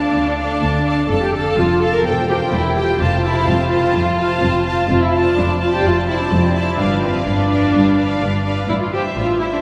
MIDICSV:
0, 0, Header, 1, 6, 480
1, 0, Start_track
1, 0, Tempo, 474684
1, 1112, Time_signature, 4, 2, 24, 8
1, 9721, End_track
2, 0, Start_track
2, 0, Title_t, "Violin section"
2, 0, Program_c, 0, 48
2, 0, Note_on_c, 0, 81, 32
2, 384, Note_off_c, 0, 81, 0
2, 400, Note_on_c, 0, 81, 47
2, 864, Note_off_c, 0, 81, 0
2, 877, Note_on_c, 0, 81, 44
2, 1106, Note_off_c, 0, 81, 0
2, 1118, Note_on_c, 0, 81, 44
2, 1351, Note_off_c, 0, 81, 0
2, 1363, Note_on_c, 0, 81, 43
2, 1823, Note_off_c, 0, 81, 0
2, 1835, Note_on_c, 0, 81, 41
2, 2072, Note_off_c, 0, 81, 0
2, 2073, Note_on_c, 0, 79, 50
2, 2312, Note_off_c, 0, 79, 0
2, 2324, Note_on_c, 0, 79, 46
2, 2791, Note_off_c, 0, 79, 0
2, 2809, Note_on_c, 0, 79, 44
2, 3034, Note_on_c, 0, 81, 50
2, 3039, Note_off_c, 0, 79, 0
2, 3272, Note_off_c, 0, 81, 0
2, 3286, Note_on_c, 0, 81, 50
2, 3755, Note_off_c, 0, 81, 0
2, 3771, Note_on_c, 0, 81, 41
2, 4228, Note_off_c, 0, 81, 0
2, 4240, Note_on_c, 0, 81, 53
2, 4707, Note_off_c, 0, 81, 0
2, 4718, Note_on_c, 0, 81, 47
2, 4952, Note_off_c, 0, 81, 0
2, 5193, Note_on_c, 0, 81, 54
2, 5664, Note_off_c, 0, 81, 0
2, 5676, Note_on_c, 0, 81, 40
2, 6137, Note_off_c, 0, 81, 0
2, 6149, Note_on_c, 0, 81, 48
2, 6614, Note_off_c, 0, 81, 0
2, 6626, Note_on_c, 0, 81, 49
2, 6860, Note_off_c, 0, 81, 0
2, 6866, Note_on_c, 0, 77, 48
2, 7096, Note_off_c, 0, 77, 0
2, 7108, Note_on_c, 0, 77, 46
2, 7571, Note_off_c, 0, 77, 0
2, 7583, Note_on_c, 0, 77, 35
2, 8053, Note_off_c, 0, 77, 0
2, 8076, Note_on_c, 0, 77, 47
2, 8542, Note_off_c, 0, 77, 0
2, 8556, Note_on_c, 0, 77, 42
2, 8788, Note_off_c, 0, 77, 0
2, 9037, Note_on_c, 0, 76, 47
2, 9504, Note_off_c, 0, 76, 0
2, 9519, Note_on_c, 0, 76, 37
2, 9721, Note_off_c, 0, 76, 0
2, 9721, End_track
3, 0, Start_track
3, 0, Title_t, "Violin section"
3, 0, Program_c, 1, 48
3, 0, Note_on_c, 1, 69, 46
3, 0, Note_on_c, 1, 77, 47
3, 369, Note_off_c, 1, 77, 0
3, 371, Note_off_c, 1, 69, 0
3, 381, Note_on_c, 1, 77, 43
3, 383, Note_on_c, 1, 69, 46
3, 847, Note_off_c, 1, 69, 0
3, 853, Note_off_c, 1, 77, 0
3, 859, Note_on_c, 1, 69, 40
3, 865, Note_on_c, 1, 77, 39
3, 1101, Note_off_c, 1, 69, 0
3, 1104, Note_off_c, 1, 77, 0
3, 1114, Note_on_c, 1, 69, 37
3, 1117, Note_on_c, 1, 77, 38
3, 1340, Note_off_c, 1, 69, 0
3, 1341, Note_off_c, 1, 77, 0
3, 1352, Note_on_c, 1, 69, 42
3, 1353, Note_on_c, 1, 77, 45
3, 1822, Note_off_c, 1, 77, 0
3, 1824, Note_off_c, 1, 69, 0
3, 1834, Note_on_c, 1, 77, 52
3, 1836, Note_on_c, 1, 69, 47
3, 2071, Note_off_c, 1, 77, 0
3, 2072, Note_off_c, 1, 69, 0
3, 2076, Note_on_c, 1, 79, 44
3, 2077, Note_on_c, 1, 72, 47
3, 2311, Note_off_c, 1, 72, 0
3, 2314, Note_off_c, 1, 79, 0
3, 2324, Note_on_c, 1, 72, 45
3, 2325, Note_on_c, 1, 79, 46
3, 2789, Note_off_c, 1, 79, 0
3, 2791, Note_off_c, 1, 72, 0
3, 2801, Note_on_c, 1, 72, 42
3, 2801, Note_on_c, 1, 79, 47
3, 3032, Note_off_c, 1, 72, 0
3, 3035, Note_off_c, 1, 79, 0
3, 3044, Note_on_c, 1, 72, 46
3, 3049, Note_on_c, 1, 77, 42
3, 3277, Note_off_c, 1, 72, 0
3, 3280, Note_off_c, 1, 77, 0
3, 3291, Note_on_c, 1, 77, 47
3, 3294, Note_on_c, 1, 72, 50
3, 3742, Note_off_c, 1, 72, 0
3, 3744, Note_off_c, 1, 77, 0
3, 3754, Note_on_c, 1, 72, 50
3, 3757, Note_on_c, 1, 77, 48
3, 4222, Note_off_c, 1, 72, 0
3, 4223, Note_off_c, 1, 77, 0
3, 4234, Note_on_c, 1, 72, 50
3, 4235, Note_on_c, 1, 77, 52
3, 4705, Note_off_c, 1, 72, 0
3, 4705, Note_off_c, 1, 77, 0
3, 4716, Note_on_c, 1, 72, 44
3, 4718, Note_on_c, 1, 77, 47
3, 4951, Note_off_c, 1, 72, 0
3, 4952, Note_off_c, 1, 77, 0
3, 5190, Note_on_c, 1, 74, 47
3, 5191, Note_on_c, 1, 72, 46
3, 5660, Note_off_c, 1, 72, 0
3, 5660, Note_off_c, 1, 74, 0
3, 5672, Note_on_c, 1, 72, 50
3, 5672, Note_on_c, 1, 74, 54
3, 6136, Note_off_c, 1, 72, 0
3, 6136, Note_off_c, 1, 74, 0
3, 6148, Note_on_c, 1, 72, 50
3, 6148, Note_on_c, 1, 74, 46
3, 6608, Note_off_c, 1, 74, 0
3, 6617, Note_off_c, 1, 72, 0
3, 6621, Note_on_c, 1, 74, 47
3, 6628, Note_on_c, 1, 72, 50
3, 6857, Note_off_c, 1, 74, 0
3, 6861, Note_off_c, 1, 72, 0
3, 6868, Note_on_c, 1, 74, 46
3, 6869, Note_on_c, 1, 71, 42
3, 7101, Note_off_c, 1, 74, 0
3, 7102, Note_off_c, 1, 71, 0
3, 7115, Note_on_c, 1, 74, 44
3, 7117, Note_on_c, 1, 71, 49
3, 7581, Note_off_c, 1, 74, 0
3, 7582, Note_off_c, 1, 71, 0
3, 7594, Note_on_c, 1, 71, 49
3, 7596, Note_on_c, 1, 74, 49
3, 8046, Note_off_c, 1, 74, 0
3, 8047, Note_off_c, 1, 71, 0
3, 8058, Note_on_c, 1, 74, 47
3, 8059, Note_on_c, 1, 71, 44
3, 8534, Note_off_c, 1, 71, 0
3, 8534, Note_off_c, 1, 74, 0
3, 8553, Note_on_c, 1, 71, 46
3, 8557, Note_on_c, 1, 74, 46
3, 8787, Note_off_c, 1, 71, 0
3, 8788, Note_off_c, 1, 74, 0
3, 9040, Note_on_c, 1, 72, 41
3, 9042, Note_off_c, 1, 72, 0
3, 9042, Note_on_c, 1, 72, 42
3, 9502, Note_off_c, 1, 72, 0
3, 9514, Note_on_c, 1, 72, 47
3, 9515, Note_off_c, 1, 72, 0
3, 9515, Note_on_c, 1, 72, 49
3, 9721, Note_off_c, 1, 72, 0
3, 9721, End_track
4, 0, Start_track
4, 0, Title_t, "Viola section"
4, 0, Program_c, 2, 48
4, 0, Note_on_c, 2, 62, 74
4, 1082, Note_off_c, 2, 62, 0
4, 1103, Note_on_c, 2, 69, 74
4, 1225, Note_off_c, 2, 69, 0
4, 1244, Note_on_c, 2, 67, 64
4, 1348, Note_on_c, 2, 69, 77
4, 1356, Note_off_c, 2, 67, 0
4, 1589, Note_on_c, 2, 65, 77
4, 1591, Note_off_c, 2, 69, 0
4, 1831, Note_off_c, 2, 65, 0
4, 1835, Note_on_c, 2, 69, 69
4, 1955, Note_off_c, 2, 69, 0
4, 1963, Note_on_c, 2, 70, 68
4, 2078, Note_off_c, 2, 70, 0
4, 2085, Note_on_c, 2, 69, 68
4, 2166, Note_off_c, 2, 69, 0
4, 2321, Note_on_c, 2, 67, 75
4, 2368, Note_off_c, 2, 67, 0
4, 2434, Note_on_c, 2, 65, 68
4, 2554, Note_off_c, 2, 65, 0
4, 2559, Note_on_c, 2, 64, 67
4, 2793, Note_off_c, 2, 64, 0
4, 2802, Note_on_c, 2, 67, 69
4, 3039, Note_on_c, 2, 65, 69
4, 3040, Note_off_c, 2, 67, 0
4, 3280, Note_off_c, 2, 65, 0
4, 3284, Note_on_c, 2, 64, 72
4, 3520, Note_on_c, 2, 65, 84
4, 3523, Note_off_c, 2, 64, 0
4, 4933, Note_off_c, 2, 65, 0
4, 4945, Note_on_c, 2, 65, 75
4, 5068, Note_off_c, 2, 65, 0
4, 5075, Note_on_c, 2, 64, 61
4, 5189, Note_on_c, 2, 65, 75
4, 5195, Note_off_c, 2, 64, 0
4, 5432, Note_off_c, 2, 65, 0
4, 5435, Note_on_c, 2, 62, 69
4, 5675, Note_off_c, 2, 62, 0
4, 5675, Note_on_c, 2, 65, 65
4, 5792, Note_off_c, 2, 65, 0
4, 5796, Note_on_c, 2, 67, 70
4, 5913, Note_off_c, 2, 67, 0
4, 5913, Note_on_c, 2, 65, 72
4, 6153, Note_off_c, 2, 65, 0
4, 6157, Note_on_c, 2, 64, 71
4, 6272, Note_off_c, 2, 64, 0
4, 6288, Note_on_c, 2, 62, 69
4, 6333, Note_off_c, 2, 62, 0
4, 6392, Note_on_c, 2, 60, 63
4, 6620, Note_on_c, 2, 64, 61
4, 6625, Note_off_c, 2, 60, 0
4, 6862, Note_off_c, 2, 64, 0
4, 6862, Note_on_c, 2, 62, 66
4, 7091, Note_on_c, 2, 60, 64
4, 7103, Note_off_c, 2, 62, 0
4, 7337, Note_on_c, 2, 62, 82
4, 7338, Note_off_c, 2, 60, 0
4, 8755, Note_off_c, 2, 62, 0
4, 8784, Note_on_c, 2, 64, 75
4, 8833, Note_off_c, 2, 64, 0
4, 8905, Note_on_c, 2, 65, 66
4, 9025, Note_off_c, 2, 65, 0
4, 9027, Note_on_c, 2, 67, 73
4, 9108, Note_off_c, 2, 67, 0
4, 9273, Note_on_c, 2, 65, 67
4, 9503, Note_on_c, 2, 64, 65
4, 9506, Note_off_c, 2, 65, 0
4, 9553, Note_off_c, 2, 64, 0
4, 9636, Note_on_c, 2, 62, 63
4, 9683, Note_off_c, 2, 62, 0
4, 9721, End_track
5, 0, Start_track
5, 0, Title_t, "Cello section"
5, 0, Program_c, 3, 48
5, 141, Note_on_c, 3, 38, 56
5, 549, Note_off_c, 3, 38, 0
5, 630, Note_on_c, 3, 38, 60
5, 1033, Note_off_c, 3, 38, 0
5, 1110, Note_on_c, 3, 41, 64
5, 1513, Note_off_c, 3, 41, 0
5, 1589, Note_on_c, 3, 41, 68
5, 1995, Note_off_c, 3, 41, 0
5, 2074, Note_on_c, 3, 40, 59
5, 2479, Note_off_c, 3, 40, 0
5, 2559, Note_on_c, 3, 40, 66
5, 2960, Note_off_c, 3, 40, 0
5, 3040, Note_on_c, 3, 41, 68
5, 3443, Note_off_c, 3, 41, 0
5, 3520, Note_on_c, 3, 41, 68
5, 3922, Note_off_c, 3, 41, 0
5, 4000, Note_on_c, 3, 41, 61
5, 4399, Note_off_c, 3, 41, 0
5, 4472, Note_on_c, 3, 41, 70
5, 4875, Note_off_c, 3, 41, 0
5, 4952, Note_on_c, 3, 41, 71
5, 5354, Note_off_c, 3, 41, 0
5, 5429, Note_on_c, 3, 41, 70
5, 5833, Note_off_c, 3, 41, 0
5, 5911, Note_on_c, 3, 41, 61
5, 6313, Note_off_c, 3, 41, 0
5, 6390, Note_on_c, 3, 41, 69
5, 6788, Note_off_c, 3, 41, 0
5, 6862, Note_on_c, 3, 43, 68
5, 7265, Note_off_c, 3, 43, 0
5, 7344, Note_on_c, 3, 43, 68
5, 7746, Note_off_c, 3, 43, 0
5, 7829, Note_on_c, 3, 43, 68
5, 8228, Note_off_c, 3, 43, 0
5, 8310, Note_on_c, 3, 43, 67
5, 8712, Note_off_c, 3, 43, 0
5, 8792, Note_on_c, 3, 45, 61
5, 9193, Note_off_c, 3, 45, 0
5, 9272, Note_on_c, 3, 45, 58
5, 9673, Note_off_c, 3, 45, 0
5, 9721, End_track
6, 0, Start_track
6, 0, Title_t, "Double bass section"
6, 0, Program_c, 4, 48
6, 146, Note_on_c, 4, 38, 57
6, 552, Note_off_c, 4, 38, 0
6, 631, Note_on_c, 4, 38, 61
6, 1034, Note_off_c, 4, 38, 0
6, 1111, Note_on_c, 4, 29, 64
6, 1514, Note_off_c, 4, 29, 0
6, 1594, Note_on_c, 4, 29, 57
6, 1997, Note_off_c, 4, 29, 0
6, 2077, Note_on_c, 4, 28, 62
6, 2481, Note_off_c, 4, 28, 0
6, 2558, Note_on_c, 4, 28, 62
6, 2959, Note_off_c, 4, 28, 0
6, 3041, Note_on_c, 4, 29, 69
6, 3444, Note_off_c, 4, 29, 0
6, 3518, Note_on_c, 4, 29, 65
6, 3921, Note_off_c, 4, 29, 0
6, 3999, Note_on_c, 4, 29, 61
6, 4398, Note_off_c, 4, 29, 0
6, 4475, Note_on_c, 4, 29, 64
6, 4877, Note_off_c, 4, 29, 0
6, 4956, Note_on_c, 4, 29, 65
6, 5357, Note_off_c, 4, 29, 0
6, 5439, Note_on_c, 4, 29, 62
6, 5839, Note_off_c, 4, 29, 0
6, 5918, Note_on_c, 4, 29, 59
6, 6316, Note_off_c, 4, 29, 0
6, 6394, Note_on_c, 4, 29, 60
6, 6790, Note_off_c, 4, 29, 0
6, 6870, Note_on_c, 4, 31, 69
6, 7269, Note_off_c, 4, 31, 0
6, 7351, Note_on_c, 4, 31, 61
6, 7749, Note_off_c, 4, 31, 0
6, 7826, Note_on_c, 4, 31, 58
6, 8227, Note_off_c, 4, 31, 0
6, 8307, Note_on_c, 4, 31, 58
6, 8711, Note_off_c, 4, 31, 0
6, 8797, Note_on_c, 4, 33, 65
6, 9196, Note_off_c, 4, 33, 0
6, 9274, Note_on_c, 4, 33, 57
6, 9674, Note_off_c, 4, 33, 0
6, 9721, End_track
0, 0, End_of_file